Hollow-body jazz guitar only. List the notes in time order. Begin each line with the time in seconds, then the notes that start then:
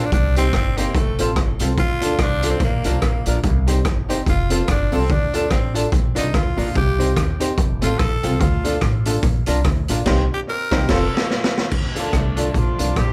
0.37 D#4 G4 C5
0.78 D#4 G4 C5
1.19 C4 F4 A4
1.36 muted hollow-body jazz guitar stroke
1.61 C4 F4 A4
2.01 D4 F4 A4
2.43 D4 F4 A4
2.85 D4 F4 A#4
3.02 muted hollow-body jazz guitar stroke
3.28 D4 F4 A#4
3.67 D#4 G4 C5
4.09 D#4 G4 C5
4.50 C4 F4 A4
4.92 C4 F4 A4
5.34 D4 F4 A4
5.74 D4 F4 A4
6.15 D4 F4 A#4
6.34 muted hollow-body jazz guitar stroke
6.57 D4 F4 A#4
6.99 D#4 G4 C5
7.40 D#4 G4 C5
7.81 C4 F4 A4
7.99 muted hollow-body jazz guitar stroke
8.23 C4 F4 A4
8.64 D4 F4 A4
9.06 D4 F4 A4
9.47 D4 F4 A#4
9.64 muted hollow-body jazz guitar stroke
9.89 D4 F4 A#4
10.06 D#4 G4 C5
10.71 D#4 G4 C5
10.89 F4 A4 C5
11.95 D4 F4 A4
12.36 D4 F4 A4
12.78 D4 F4 A#4